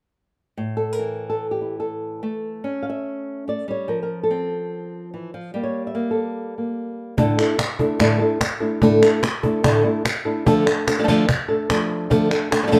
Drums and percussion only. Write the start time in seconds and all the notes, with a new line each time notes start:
7.18 cajon bass
7.38 cajon slap, clap
7.59 cajon slap, clap
7.79 cajon bass
8.00 cajon bass, cajon slap, clap
8.41 cajon bass, cajon slap, clap
8.82 cajon bass
9.03 cajon slap, clap
9.23 cajon slap, clap
9.43 cajon bass
9.64 cajon bass, clap
10.05 cajon slap, clap
10.47 cajon bass
10.67 cajon slap, clap
10.88 cajon slap, clap
11.08 cajon bass
11.29 cajon bass, clap
11.70 cajon bass, cajon slap, clap
11.91 cajon slap
12.11 cajon bass
12.31 clap
12.52 cajon slap, clap
12.73 cajon bass